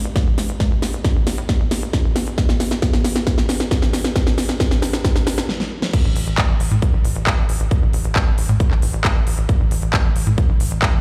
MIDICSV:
0, 0, Header, 1, 3, 480
1, 0, Start_track
1, 0, Tempo, 444444
1, 649, Time_signature, 4, 2, 24, 8
1, 11890, End_track
2, 0, Start_track
2, 0, Title_t, "Analog synth bass"
2, 0, Program_c, 0, 38
2, 50, Note_on_c, 0, 33, 94
2, 151, Note_off_c, 0, 33, 0
2, 289, Note_on_c, 0, 33, 87
2, 391, Note_off_c, 0, 33, 0
2, 410, Note_on_c, 0, 33, 104
2, 511, Note_off_c, 0, 33, 0
2, 529, Note_on_c, 0, 33, 89
2, 631, Note_off_c, 0, 33, 0
2, 769, Note_on_c, 0, 33, 85
2, 870, Note_off_c, 0, 33, 0
2, 889, Note_on_c, 0, 33, 99
2, 991, Note_off_c, 0, 33, 0
2, 1009, Note_on_c, 0, 33, 90
2, 1110, Note_off_c, 0, 33, 0
2, 1249, Note_on_c, 0, 33, 88
2, 1351, Note_off_c, 0, 33, 0
2, 1370, Note_on_c, 0, 33, 97
2, 1471, Note_off_c, 0, 33, 0
2, 1489, Note_on_c, 0, 45, 90
2, 1590, Note_off_c, 0, 45, 0
2, 1729, Note_on_c, 0, 35, 89
2, 1830, Note_off_c, 0, 35, 0
2, 1849, Note_on_c, 0, 33, 100
2, 1950, Note_off_c, 0, 33, 0
2, 1969, Note_on_c, 0, 33, 98
2, 2070, Note_off_c, 0, 33, 0
2, 2209, Note_on_c, 0, 33, 88
2, 2310, Note_off_c, 0, 33, 0
2, 2330, Note_on_c, 0, 33, 98
2, 2431, Note_off_c, 0, 33, 0
2, 2450, Note_on_c, 0, 33, 93
2, 2551, Note_off_c, 0, 33, 0
2, 2690, Note_on_c, 0, 33, 91
2, 2791, Note_off_c, 0, 33, 0
2, 2809, Note_on_c, 0, 33, 96
2, 2910, Note_off_c, 0, 33, 0
2, 2930, Note_on_c, 0, 33, 91
2, 3031, Note_off_c, 0, 33, 0
2, 3169, Note_on_c, 0, 33, 86
2, 3270, Note_off_c, 0, 33, 0
2, 3289, Note_on_c, 0, 33, 101
2, 3390, Note_off_c, 0, 33, 0
2, 3410, Note_on_c, 0, 45, 92
2, 3511, Note_off_c, 0, 45, 0
2, 3650, Note_on_c, 0, 35, 91
2, 3751, Note_off_c, 0, 35, 0
2, 3770, Note_on_c, 0, 33, 96
2, 3871, Note_off_c, 0, 33, 0
2, 3889, Note_on_c, 0, 33, 94
2, 3990, Note_off_c, 0, 33, 0
2, 4249, Note_on_c, 0, 33, 99
2, 4350, Note_off_c, 0, 33, 0
2, 4369, Note_on_c, 0, 33, 90
2, 4470, Note_off_c, 0, 33, 0
2, 4729, Note_on_c, 0, 33, 97
2, 4831, Note_off_c, 0, 33, 0
2, 4850, Note_on_c, 0, 33, 93
2, 4951, Note_off_c, 0, 33, 0
2, 5209, Note_on_c, 0, 33, 98
2, 5311, Note_off_c, 0, 33, 0
2, 5330, Note_on_c, 0, 45, 93
2, 5431, Note_off_c, 0, 45, 0
2, 5569, Note_on_c, 0, 35, 92
2, 5671, Note_off_c, 0, 35, 0
2, 5689, Note_on_c, 0, 33, 100
2, 5791, Note_off_c, 0, 33, 0
2, 5810, Note_on_c, 0, 33, 97
2, 5911, Note_off_c, 0, 33, 0
2, 6529, Note_on_c, 0, 33, 87
2, 6631, Note_off_c, 0, 33, 0
2, 6649, Note_on_c, 0, 33, 103
2, 6751, Note_off_c, 0, 33, 0
2, 6769, Note_on_c, 0, 33, 90
2, 6870, Note_off_c, 0, 33, 0
2, 7009, Note_on_c, 0, 33, 86
2, 7110, Note_off_c, 0, 33, 0
2, 7129, Note_on_c, 0, 33, 103
2, 7230, Note_off_c, 0, 33, 0
2, 7249, Note_on_c, 0, 45, 95
2, 7350, Note_off_c, 0, 45, 0
2, 7489, Note_on_c, 0, 35, 92
2, 7590, Note_off_c, 0, 35, 0
2, 7609, Note_on_c, 0, 33, 101
2, 7710, Note_off_c, 0, 33, 0
2, 7729, Note_on_c, 0, 33, 100
2, 7830, Note_off_c, 0, 33, 0
2, 7969, Note_on_c, 0, 33, 90
2, 8071, Note_off_c, 0, 33, 0
2, 8089, Note_on_c, 0, 33, 96
2, 8190, Note_off_c, 0, 33, 0
2, 8210, Note_on_c, 0, 33, 86
2, 8311, Note_off_c, 0, 33, 0
2, 8449, Note_on_c, 0, 33, 89
2, 8551, Note_off_c, 0, 33, 0
2, 8570, Note_on_c, 0, 33, 100
2, 8671, Note_off_c, 0, 33, 0
2, 8689, Note_on_c, 0, 33, 91
2, 8790, Note_off_c, 0, 33, 0
2, 8929, Note_on_c, 0, 33, 89
2, 9030, Note_off_c, 0, 33, 0
2, 9049, Note_on_c, 0, 33, 93
2, 9150, Note_off_c, 0, 33, 0
2, 9169, Note_on_c, 0, 45, 93
2, 9270, Note_off_c, 0, 45, 0
2, 9409, Note_on_c, 0, 35, 88
2, 9510, Note_off_c, 0, 35, 0
2, 9529, Note_on_c, 0, 33, 101
2, 9630, Note_off_c, 0, 33, 0
2, 9649, Note_on_c, 0, 33, 98
2, 9750, Note_off_c, 0, 33, 0
2, 9889, Note_on_c, 0, 33, 93
2, 9991, Note_off_c, 0, 33, 0
2, 10009, Note_on_c, 0, 33, 97
2, 10110, Note_off_c, 0, 33, 0
2, 10129, Note_on_c, 0, 33, 93
2, 10231, Note_off_c, 0, 33, 0
2, 10369, Note_on_c, 0, 33, 89
2, 10471, Note_off_c, 0, 33, 0
2, 10490, Note_on_c, 0, 33, 104
2, 10591, Note_off_c, 0, 33, 0
2, 10609, Note_on_c, 0, 33, 88
2, 10710, Note_off_c, 0, 33, 0
2, 10849, Note_on_c, 0, 33, 88
2, 10950, Note_off_c, 0, 33, 0
2, 10969, Note_on_c, 0, 33, 98
2, 11070, Note_off_c, 0, 33, 0
2, 11089, Note_on_c, 0, 45, 92
2, 11190, Note_off_c, 0, 45, 0
2, 11329, Note_on_c, 0, 35, 94
2, 11430, Note_off_c, 0, 35, 0
2, 11449, Note_on_c, 0, 33, 95
2, 11550, Note_off_c, 0, 33, 0
2, 11569, Note_on_c, 0, 33, 94
2, 11670, Note_off_c, 0, 33, 0
2, 11809, Note_on_c, 0, 33, 90
2, 11890, Note_off_c, 0, 33, 0
2, 11890, End_track
3, 0, Start_track
3, 0, Title_t, "Drums"
3, 49, Note_on_c, 9, 42, 61
3, 157, Note_off_c, 9, 42, 0
3, 169, Note_on_c, 9, 36, 120
3, 169, Note_on_c, 9, 38, 83
3, 169, Note_on_c, 9, 42, 59
3, 277, Note_off_c, 9, 36, 0
3, 277, Note_off_c, 9, 38, 0
3, 277, Note_off_c, 9, 42, 0
3, 409, Note_on_c, 9, 38, 77
3, 409, Note_on_c, 9, 46, 105
3, 517, Note_off_c, 9, 38, 0
3, 517, Note_off_c, 9, 46, 0
3, 529, Note_on_c, 9, 42, 61
3, 637, Note_off_c, 9, 42, 0
3, 649, Note_on_c, 9, 36, 109
3, 649, Note_on_c, 9, 38, 79
3, 649, Note_on_c, 9, 42, 59
3, 757, Note_off_c, 9, 36, 0
3, 757, Note_off_c, 9, 38, 0
3, 757, Note_off_c, 9, 42, 0
3, 889, Note_on_c, 9, 38, 84
3, 889, Note_on_c, 9, 46, 94
3, 997, Note_off_c, 9, 38, 0
3, 997, Note_off_c, 9, 46, 0
3, 1009, Note_on_c, 9, 42, 62
3, 1117, Note_off_c, 9, 42, 0
3, 1129, Note_on_c, 9, 36, 120
3, 1129, Note_on_c, 9, 38, 86
3, 1129, Note_on_c, 9, 42, 65
3, 1237, Note_off_c, 9, 36, 0
3, 1237, Note_off_c, 9, 38, 0
3, 1237, Note_off_c, 9, 42, 0
3, 1369, Note_on_c, 9, 38, 88
3, 1369, Note_on_c, 9, 46, 102
3, 1477, Note_off_c, 9, 38, 0
3, 1477, Note_off_c, 9, 46, 0
3, 1489, Note_on_c, 9, 42, 68
3, 1597, Note_off_c, 9, 42, 0
3, 1609, Note_on_c, 9, 36, 109
3, 1609, Note_on_c, 9, 38, 88
3, 1609, Note_on_c, 9, 42, 63
3, 1717, Note_off_c, 9, 36, 0
3, 1717, Note_off_c, 9, 38, 0
3, 1717, Note_off_c, 9, 42, 0
3, 1849, Note_on_c, 9, 38, 93
3, 1849, Note_on_c, 9, 46, 101
3, 1957, Note_off_c, 9, 38, 0
3, 1957, Note_off_c, 9, 46, 0
3, 1969, Note_on_c, 9, 42, 64
3, 2077, Note_off_c, 9, 42, 0
3, 2089, Note_on_c, 9, 36, 108
3, 2089, Note_on_c, 9, 38, 94
3, 2089, Note_on_c, 9, 42, 66
3, 2197, Note_off_c, 9, 36, 0
3, 2197, Note_off_c, 9, 38, 0
3, 2197, Note_off_c, 9, 42, 0
3, 2329, Note_on_c, 9, 38, 92
3, 2329, Note_on_c, 9, 46, 101
3, 2437, Note_off_c, 9, 38, 0
3, 2437, Note_off_c, 9, 46, 0
3, 2449, Note_on_c, 9, 42, 68
3, 2557, Note_off_c, 9, 42, 0
3, 2569, Note_on_c, 9, 36, 118
3, 2569, Note_on_c, 9, 38, 83
3, 2569, Note_on_c, 9, 42, 67
3, 2677, Note_off_c, 9, 36, 0
3, 2677, Note_off_c, 9, 38, 0
3, 2677, Note_off_c, 9, 42, 0
3, 2689, Note_on_c, 9, 38, 83
3, 2797, Note_off_c, 9, 38, 0
3, 2809, Note_on_c, 9, 38, 90
3, 2809, Note_on_c, 9, 46, 98
3, 2917, Note_off_c, 9, 38, 0
3, 2917, Note_off_c, 9, 46, 0
3, 2929, Note_on_c, 9, 38, 79
3, 2929, Note_on_c, 9, 42, 67
3, 3037, Note_off_c, 9, 38, 0
3, 3037, Note_off_c, 9, 42, 0
3, 3049, Note_on_c, 9, 36, 117
3, 3049, Note_on_c, 9, 38, 101
3, 3049, Note_on_c, 9, 42, 70
3, 3157, Note_off_c, 9, 36, 0
3, 3157, Note_off_c, 9, 38, 0
3, 3157, Note_off_c, 9, 42, 0
3, 3168, Note_on_c, 9, 38, 85
3, 3276, Note_off_c, 9, 38, 0
3, 3288, Note_on_c, 9, 38, 96
3, 3288, Note_on_c, 9, 46, 103
3, 3396, Note_off_c, 9, 38, 0
3, 3396, Note_off_c, 9, 46, 0
3, 3408, Note_on_c, 9, 38, 86
3, 3408, Note_on_c, 9, 42, 70
3, 3516, Note_off_c, 9, 38, 0
3, 3516, Note_off_c, 9, 42, 0
3, 3528, Note_on_c, 9, 38, 95
3, 3528, Note_on_c, 9, 42, 65
3, 3529, Note_on_c, 9, 36, 108
3, 3636, Note_off_c, 9, 38, 0
3, 3636, Note_off_c, 9, 42, 0
3, 3637, Note_off_c, 9, 36, 0
3, 3648, Note_on_c, 9, 38, 84
3, 3756, Note_off_c, 9, 38, 0
3, 3768, Note_on_c, 9, 38, 97
3, 3768, Note_on_c, 9, 46, 104
3, 3876, Note_off_c, 9, 38, 0
3, 3876, Note_off_c, 9, 46, 0
3, 3889, Note_on_c, 9, 38, 87
3, 3889, Note_on_c, 9, 42, 69
3, 3997, Note_off_c, 9, 38, 0
3, 3997, Note_off_c, 9, 42, 0
3, 4009, Note_on_c, 9, 36, 110
3, 4009, Note_on_c, 9, 38, 98
3, 4009, Note_on_c, 9, 42, 70
3, 4117, Note_off_c, 9, 36, 0
3, 4117, Note_off_c, 9, 38, 0
3, 4117, Note_off_c, 9, 42, 0
3, 4129, Note_on_c, 9, 38, 85
3, 4237, Note_off_c, 9, 38, 0
3, 4248, Note_on_c, 9, 38, 100
3, 4248, Note_on_c, 9, 46, 99
3, 4356, Note_off_c, 9, 38, 0
3, 4356, Note_off_c, 9, 46, 0
3, 4368, Note_on_c, 9, 38, 92
3, 4368, Note_on_c, 9, 42, 69
3, 4476, Note_off_c, 9, 38, 0
3, 4476, Note_off_c, 9, 42, 0
3, 4488, Note_on_c, 9, 38, 96
3, 4488, Note_on_c, 9, 42, 63
3, 4489, Note_on_c, 9, 36, 125
3, 4596, Note_off_c, 9, 38, 0
3, 4596, Note_off_c, 9, 42, 0
3, 4597, Note_off_c, 9, 36, 0
3, 4608, Note_on_c, 9, 38, 90
3, 4716, Note_off_c, 9, 38, 0
3, 4729, Note_on_c, 9, 38, 97
3, 4729, Note_on_c, 9, 46, 99
3, 4837, Note_off_c, 9, 38, 0
3, 4837, Note_off_c, 9, 46, 0
3, 4848, Note_on_c, 9, 38, 88
3, 4956, Note_off_c, 9, 38, 0
3, 4969, Note_on_c, 9, 36, 117
3, 4969, Note_on_c, 9, 38, 108
3, 4969, Note_on_c, 9, 42, 72
3, 5077, Note_off_c, 9, 36, 0
3, 5077, Note_off_c, 9, 38, 0
3, 5077, Note_off_c, 9, 42, 0
3, 5088, Note_on_c, 9, 38, 90
3, 5196, Note_off_c, 9, 38, 0
3, 5209, Note_on_c, 9, 38, 107
3, 5209, Note_on_c, 9, 46, 102
3, 5317, Note_off_c, 9, 38, 0
3, 5317, Note_off_c, 9, 46, 0
3, 5329, Note_on_c, 9, 38, 98
3, 5329, Note_on_c, 9, 42, 68
3, 5437, Note_off_c, 9, 38, 0
3, 5437, Note_off_c, 9, 42, 0
3, 5449, Note_on_c, 9, 36, 114
3, 5449, Note_on_c, 9, 38, 111
3, 5449, Note_on_c, 9, 42, 68
3, 5557, Note_off_c, 9, 36, 0
3, 5557, Note_off_c, 9, 38, 0
3, 5557, Note_off_c, 9, 42, 0
3, 5569, Note_on_c, 9, 38, 89
3, 5677, Note_off_c, 9, 38, 0
3, 5689, Note_on_c, 9, 38, 110
3, 5689, Note_on_c, 9, 46, 106
3, 5797, Note_off_c, 9, 38, 0
3, 5797, Note_off_c, 9, 46, 0
3, 5809, Note_on_c, 9, 38, 99
3, 5809, Note_on_c, 9, 42, 71
3, 5917, Note_off_c, 9, 38, 0
3, 5917, Note_off_c, 9, 42, 0
3, 5929, Note_on_c, 9, 38, 65
3, 6037, Note_off_c, 9, 38, 0
3, 6049, Note_on_c, 9, 38, 62
3, 6157, Note_off_c, 9, 38, 0
3, 6289, Note_on_c, 9, 38, 86
3, 6397, Note_off_c, 9, 38, 0
3, 6409, Note_on_c, 9, 36, 123
3, 6409, Note_on_c, 9, 42, 65
3, 6409, Note_on_c, 9, 49, 104
3, 6517, Note_off_c, 9, 36, 0
3, 6517, Note_off_c, 9, 42, 0
3, 6517, Note_off_c, 9, 49, 0
3, 6649, Note_on_c, 9, 46, 107
3, 6757, Note_off_c, 9, 46, 0
3, 6769, Note_on_c, 9, 42, 67
3, 6877, Note_off_c, 9, 42, 0
3, 6889, Note_on_c, 9, 36, 124
3, 6889, Note_on_c, 9, 39, 127
3, 6889, Note_on_c, 9, 42, 73
3, 6997, Note_off_c, 9, 36, 0
3, 6997, Note_off_c, 9, 39, 0
3, 6997, Note_off_c, 9, 42, 0
3, 7129, Note_on_c, 9, 46, 106
3, 7237, Note_off_c, 9, 46, 0
3, 7250, Note_on_c, 9, 42, 68
3, 7358, Note_off_c, 9, 42, 0
3, 7369, Note_on_c, 9, 36, 120
3, 7369, Note_on_c, 9, 42, 69
3, 7477, Note_off_c, 9, 36, 0
3, 7477, Note_off_c, 9, 42, 0
3, 7609, Note_on_c, 9, 46, 104
3, 7717, Note_off_c, 9, 46, 0
3, 7729, Note_on_c, 9, 42, 67
3, 7837, Note_off_c, 9, 42, 0
3, 7849, Note_on_c, 9, 36, 118
3, 7849, Note_on_c, 9, 39, 127
3, 7849, Note_on_c, 9, 42, 68
3, 7957, Note_off_c, 9, 36, 0
3, 7957, Note_off_c, 9, 39, 0
3, 7957, Note_off_c, 9, 42, 0
3, 8089, Note_on_c, 9, 46, 103
3, 8197, Note_off_c, 9, 46, 0
3, 8209, Note_on_c, 9, 42, 70
3, 8317, Note_off_c, 9, 42, 0
3, 8329, Note_on_c, 9, 36, 127
3, 8329, Note_on_c, 9, 42, 61
3, 8437, Note_off_c, 9, 36, 0
3, 8437, Note_off_c, 9, 42, 0
3, 8569, Note_on_c, 9, 46, 106
3, 8677, Note_off_c, 9, 46, 0
3, 8689, Note_on_c, 9, 42, 66
3, 8797, Note_off_c, 9, 42, 0
3, 8809, Note_on_c, 9, 36, 127
3, 8809, Note_on_c, 9, 39, 127
3, 8809, Note_on_c, 9, 42, 71
3, 8917, Note_off_c, 9, 36, 0
3, 8917, Note_off_c, 9, 39, 0
3, 8917, Note_off_c, 9, 42, 0
3, 9049, Note_on_c, 9, 46, 118
3, 9157, Note_off_c, 9, 46, 0
3, 9169, Note_on_c, 9, 42, 68
3, 9277, Note_off_c, 9, 42, 0
3, 9289, Note_on_c, 9, 36, 126
3, 9289, Note_on_c, 9, 42, 66
3, 9397, Note_off_c, 9, 36, 0
3, 9397, Note_off_c, 9, 42, 0
3, 9409, Note_on_c, 9, 39, 39
3, 9517, Note_off_c, 9, 39, 0
3, 9529, Note_on_c, 9, 46, 109
3, 9637, Note_off_c, 9, 46, 0
3, 9649, Note_on_c, 9, 42, 67
3, 9757, Note_off_c, 9, 42, 0
3, 9769, Note_on_c, 9, 36, 126
3, 9769, Note_on_c, 9, 39, 127
3, 9769, Note_on_c, 9, 42, 65
3, 9877, Note_off_c, 9, 36, 0
3, 9877, Note_off_c, 9, 39, 0
3, 9877, Note_off_c, 9, 42, 0
3, 10009, Note_on_c, 9, 46, 109
3, 10117, Note_off_c, 9, 46, 0
3, 10128, Note_on_c, 9, 42, 68
3, 10236, Note_off_c, 9, 42, 0
3, 10249, Note_on_c, 9, 36, 127
3, 10249, Note_on_c, 9, 42, 63
3, 10357, Note_off_c, 9, 36, 0
3, 10357, Note_off_c, 9, 42, 0
3, 10489, Note_on_c, 9, 46, 116
3, 10597, Note_off_c, 9, 46, 0
3, 10609, Note_on_c, 9, 42, 62
3, 10717, Note_off_c, 9, 42, 0
3, 10729, Note_on_c, 9, 36, 127
3, 10729, Note_on_c, 9, 39, 127
3, 10729, Note_on_c, 9, 42, 70
3, 10837, Note_off_c, 9, 36, 0
3, 10837, Note_off_c, 9, 39, 0
3, 10837, Note_off_c, 9, 42, 0
3, 10969, Note_on_c, 9, 46, 111
3, 11077, Note_off_c, 9, 46, 0
3, 11089, Note_on_c, 9, 42, 67
3, 11197, Note_off_c, 9, 42, 0
3, 11209, Note_on_c, 9, 36, 124
3, 11209, Note_on_c, 9, 42, 63
3, 11317, Note_off_c, 9, 36, 0
3, 11317, Note_off_c, 9, 42, 0
3, 11449, Note_on_c, 9, 46, 118
3, 11557, Note_off_c, 9, 46, 0
3, 11569, Note_on_c, 9, 42, 68
3, 11677, Note_off_c, 9, 42, 0
3, 11689, Note_on_c, 9, 36, 125
3, 11689, Note_on_c, 9, 39, 127
3, 11689, Note_on_c, 9, 42, 64
3, 11797, Note_off_c, 9, 36, 0
3, 11797, Note_off_c, 9, 39, 0
3, 11797, Note_off_c, 9, 42, 0
3, 11890, End_track
0, 0, End_of_file